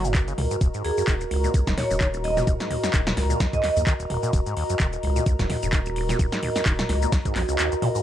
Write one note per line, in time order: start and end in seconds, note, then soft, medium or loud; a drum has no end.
0.00 0.33 F#1 loud
0.00 8.03 F#4 medium
0.00 8.03 A#4 medium
0.00 8.03 D#5 medium
0.00 8.03 A#5 medium
0.05 0.16 F#2 medium
0.05 closed hi-hat soft
0.05 cabasa medium
0.15 0.22 D#2 loud
0.15 kick loud
0.15 clap loud
0.15 closed hi-hat medium
0.15 cabasa medium
0.28 0.33 C#3 medium
0.28 closed hi-hat soft
0.28 cabasa soft
0.38 0.42 C#2 medium
0.38 0.47 C#2 loud
0.38 mid tom loud
0.38 open hi-hat loud
0.51 0.57 G#2 medium
0.51 closed hi-hat soft
0.51 cabasa medium
0.61 0.70 D#1 loud
0.61 0.68 D#2 medium
0.61 kick loud
0.61 closed hi-hat medium
0.61 cabasa medium
0.74 0.83 G#2 medium
0.74 closed hi-hat medium
0.74 cabasa soft
0.84 0.92 D#2 medium
0.84 1.03 G#4 medium
0.84 open hi-hat loud
0.98 1.03 F#2 medium
0.98 closed hi-hat soft
0.98 cabasa medium
1.08 1.25 D#1 medium
1.08 1.15 D#3 loud
1.08 kick loud
1.08 clap loud
1.08 closed hi-hat medium
1.08 cabasa medium
1.21 1.26 D#1 medium
1.21 closed hi-hat soft
1.21 cabasa soft
1.31 1.38 D#1 medium
1.31 1.48 C#2 medium
1.31 open hi-hat loud
1.44 1.52 A#2 medium
1.44 closed hi-hat soft
1.44 cabasa medium
1.54 1.63 C#2 medium
1.54 1.61 D#2 medium
1.54 kick loud
1.54 closed hi-hat medium
1.54 cabasa medium
1.67 1.74 D#1 loud
1.67 1.76 G#2 medium
1.67 kick medium
1.67 snare medium
1.67 closed hi-hat medium
1.67 cabasa soft
1.78 1.85 D#2 medium
1.78 1.86 C#5 medium
1.78 snare soft
1.78 mid tom loud
1.78 open hi-hat loud
1.91 2.42 D#1 medium
1.91 1.96 F#2 medium
1.91 1.97 C#5 medium
1.91 closed hi-hat soft
1.91 cabasa medium
2.01 2.08 D#3 loud
2.01 kick loud
2.01 clap loud
2.01 closed hi-hat medium
2.01 cabasa medium
2.14 2.19 D#1 medium
2.14 closed hi-hat soft
2.14 cabasa soft
2.24 2.31 D#1 medium
2.24 2.42 D#5 medium
2.24 open hi-hat loud
2.37 2.45 A#2 medium
2.37 snare soft
2.37 mid tom loud
2.37 cabasa medium
2.47 2.56 D#1 loud
2.47 2.54 D#2 medium
2.47 kick loud
2.47 closed hi-hat medium
2.47 mid tom loud
2.47 cabasa medium
2.60 2.69 G#2 medium
2.60 snare medium
2.60 closed hi-hat medium
2.60 cabasa soft
2.70 2.78 D#2 medium
2.70 mid tom medium
2.70 open hi-hat loud
2.83 2.89 F#2 medium
2.83 snare medium
2.83 closed hi-hat soft
2.83 cabasa medium
2.94 3.11 D#1 medium
2.94 3.01 D#3 loud
2.94 kick loud
2.94 clap loud
2.94 closed hi-hat medium
2.94 cabasa medium
3.07 3.12 D#1 medium
3.07 snare medium
3.07 closed hi-hat medium
3.07 mid tom medium
3.07 cabasa soft
3.17 3.24 D#1 medium
3.17 3.34 C#2 medium
3.17 snare soft
3.17 open hi-hat loud
3.30 3.38 A#2 medium
3.30 closed hi-hat soft
3.30 cabasa medium
3.40 3.47 D#2 medium
3.40 kick loud
3.40 snare medium
3.40 closed hi-hat medium
3.40 cabasa medium
3.53 3.62 G#2 medium
3.53 3.60 D#5 medium
3.53 kick medium
3.53 closed hi-hat medium
3.53 cabasa soft
3.63 3.71 D#2 medium
3.63 snare soft
3.63 clap medium
3.63 open hi-hat loud
3.77 3.84 D#2 medium
3.77 3.82 F#2 medium
3.77 closed hi-hat soft
3.77 cabasa medium
3.87 3.94 D#3 loud
3.87 kick loud
3.87 clap loud
3.87 closed hi-hat medium
3.87 cabasa medium
4.00 4.05 D#1 medium
4.00 closed hi-hat soft
4.00 cabasa soft
4.10 4.17 D#1 medium
4.10 mid tom medium
4.10 open hi-hat loud
4.23 4.32 A#2 medium
4.23 closed hi-hat soft
4.23 cabasa medium
4.33 4.42 D#1 loud
4.33 4.41 D#2 medium
4.33 kick loud
4.33 closed hi-hat medium
4.33 cabasa medium
4.46 4.55 G#2 medium
4.46 closed hi-hat medium
4.46 cabasa soft
4.57 4.64 D#2 medium
4.57 open hi-hat loud
4.70 4.75 F#2 medium
4.70 closed hi-hat soft
4.70 cabasa medium
4.80 4.97 D#1 loud
4.80 4.87 D#3 loud
4.80 kick loud
4.80 clap loud
4.80 closed hi-hat medium
4.80 cabasa medium
4.93 4.99 D#1 medium
4.93 closed hi-hat medium
4.93 cabasa soft
5.03 5.10 D#1 medium
5.03 5.20 C#2 medium
5.03 open hi-hat loud
5.16 5.25 A#2 medium
5.16 closed hi-hat soft
5.16 cabasa medium
5.26 5.35 C#2 medium
5.26 5.34 D#2 medium
5.26 kick loud
5.26 closed hi-hat medium
5.26 cabasa medium
5.39 5.47 D#1 loud
5.39 5.48 G#2 medium
5.39 kick medium
5.39 snare medium
5.39 closed hi-hat medium
5.39 cabasa soft
5.50 5.57 D#2 medium
5.50 snare soft
5.50 mid tom medium
5.50 open hi-hat loud
5.63 6.14 D#1 medium
5.63 5.68 F#2 medium
5.63 closed hi-hat soft
5.63 cabasa medium
5.73 5.80 D#3 loud
5.73 kick loud
5.73 clap loud
5.73 closed hi-hat medium
5.73 cabasa medium
5.86 5.92 D#1 medium
5.86 closed hi-hat medium
5.86 cabasa soft
5.96 6.03 D#1 medium
5.96 open hi-hat loud
6.09 6.18 A#2 medium
6.09 snare soft
6.09 mid tom medium
6.09 cabasa medium
6.19 6.28 D#1 loud
6.19 6.27 D#2 medium
6.19 kick loud
6.19 closed hi-hat medium
6.19 mid tom medium
6.19 cabasa medium
6.32 6.41 G#2 medium
6.32 snare medium
6.32 closed hi-hat medium
6.32 cabasa soft
6.43 6.50 D#2 medium
6.43 mid tom medium
6.43 open hi-hat loud
6.56 6.61 F#2 medium
6.56 snare medium
6.56 closed hi-hat soft
6.56 cabasa medium
6.66 6.83 D#1 medium
6.66 6.73 D#3 loud
6.66 kick loud
6.66 clap loud
6.66 closed hi-hat medium
6.66 cabasa medium
6.79 6.85 D#1 medium
6.79 snare medium
6.79 closed hi-hat medium
6.79 mid tom medium
6.79 cabasa soft
6.89 6.96 D#1 medium
6.89 7.06 C#2 medium
6.89 snare soft
6.89 open hi-hat loud
7.02 7.11 A#2 medium
7.02 closed hi-hat soft
7.02 cabasa medium
7.12 7.20 D#2 medium
7.12 kick loud
7.12 snare medium
7.12 closed hi-hat medium
7.12 cabasa medium
7.25 7.34 G#2 medium
7.25 kick medium
7.25 closed hi-hat medium
7.25 cabasa soft
7.36 7.45 A#1 medium
7.36 7.43 F2 medium
7.36 snare soft
7.36 clap medium
7.36 open hi-hat loud
7.49 7.57 C#2 loud
7.49 closed hi-hat soft
7.49 cabasa medium
7.59 7.70 D#2 medium
7.59 clap loud
7.59 closed hi-hat medium
7.59 cabasa medium
7.72 7.75 D#2 medium
7.72 closed hi-hat medium
7.72 cabasa soft
7.82 7.89 A#2 loud
7.82 mid tom medium
7.82 open hi-hat loud
7.95 8.01 G#2 medium
7.95 closed hi-hat soft
7.95 cabasa medium